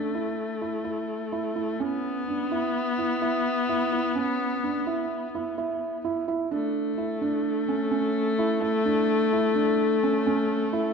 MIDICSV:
0, 0, Header, 1, 3, 480
1, 0, Start_track
1, 0, Key_signature, 3, "major"
1, 0, Tempo, 470219
1, 1838, Time_signature, 5, 2, 24, 8
1, 11161, End_track
2, 0, Start_track
2, 0, Title_t, "Felt piano"
2, 0, Program_c, 0, 0
2, 0, Note_on_c, 0, 62, 66
2, 106, Note_off_c, 0, 62, 0
2, 149, Note_on_c, 0, 64, 69
2, 546, Note_off_c, 0, 64, 0
2, 627, Note_on_c, 0, 64, 68
2, 828, Note_off_c, 0, 64, 0
2, 863, Note_on_c, 0, 64, 76
2, 1263, Note_off_c, 0, 64, 0
2, 1350, Note_on_c, 0, 64, 77
2, 1550, Note_off_c, 0, 64, 0
2, 1589, Note_on_c, 0, 64, 71
2, 1790, Note_off_c, 0, 64, 0
2, 1837, Note_on_c, 0, 61, 80
2, 2233, Note_off_c, 0, 61, 0
2, 2328, Note_on_c, 0, 62, 69
2, 2522, Note_off_c, 0, 62, 0
2, 2567, Note_on_c, 0, 64, 75
2, 2960, Note_off_c, 0, 64, 0
2, 3047, Note_on_c, 0, 64, 68
2, 3243, Note_off_c, 0, 64, 0
2, 3285, Note_on_c, 0, 64, 86
2, 3679, Note_off_c, 0, 64, 0
2, 3769, Note_on_c, 0, 64, 81
2, 3964, Note_off_c, 0, 64, 0
2, 4008, Note_on_c, 0, 64, 76
2, 4204, Note_off_c, 0, 64, 0
2, 4242, Note_on_c, 0, 61, 81
2, 4638, Note_off_c, 0, 61, 0
2, 4735, Note_on_c, 0, 62, 75
2, 4928, Note_off_c, 0, 62, 0
2, 4969, Note_on_c, 0, 64, 80
2, 5362, Note_off_c, 0, 64, 0
2, 5459, Note_on_c, 0, 64, 69
2, 5651, Note_off_c, 0, 64, 0
2, 5694, Note_on_c, 0, 64, 81
2, 6084, Note_off_c, 0, 64, 0
2, 6171, Note_on_c, 0, 64, 80
2, 6365, Note_off_c, 0, 64, 0
2, 6410, Note_on_c, 0, 64, 85
2, 6605, Note_off_c, 0, 64, 0
2, 6648, Note_on_c, 0, 62, 80
2, 7040, Note_off_c, 0, 62, 0
2, 7122, Note_on_c, 0, 64, 71
2, 7319, Note_off_c, 0, 64, 0
2, 7365, Note_on_c, 0, 62, 81
2, 7757, Note_off_c, 0, 62, 0
2, 7846, Note_on_c, 0, 61, 80
2, 8041, Note_off_c, 0, 61, 0
2, 8078, Note_on_c, 0, 61, 85
2, 8472, Note_off_c, 0, 61, 0
2, 8562, Note_on_c, 0, 64, 83
2, 8757, Note_off_c, 0, 64, 0
2, 8792, Note_on_c, 0, 64, 82
2, 8991, Note_off_c, 0, 64, 0
2, 9036, Note_on_c, 0, 62, 76
2, 9429, Note_off_c, 0, 62, 0
2, 9520, Note_on_c, 0, 64, 72
2, 9715, Note_off_c, 0, 64, 0
2, 9751, Note_on_c, 0, 62, 87
2, 10145, Note_off_c, 0, 62, 0
2, 10240, Note_on_c, 0, 61, 81
2, 10434, Note_off_c, 0, 61, 0
2, 10480, Note_on_c, 0, 61, 95
2, 10869, Note_off_c, 0, 61, 0
2, 10952, Note_on_c, 0, 64, 85
2, 11148, Note_off_c, 0, 64, 0
2, 11161, End_track
3, 0, Start_track
3, 0, Title_t, "Viola"
3, 0, Program_c, 1, 41
3, 0, Note_on_c, 1, 57, 77
3, 1847, Note_on_c, 1, 59, 113
3, 1862, Note_off_c, 1, 57, 0
3, 6410, Note_off_c, 1, 59, 0
3, 6659, Note_on_c, 1, 57, 105
3, 11161, Note_off_c, 1, 57, 0
3, 11161, End_track
0, 0, End_of_file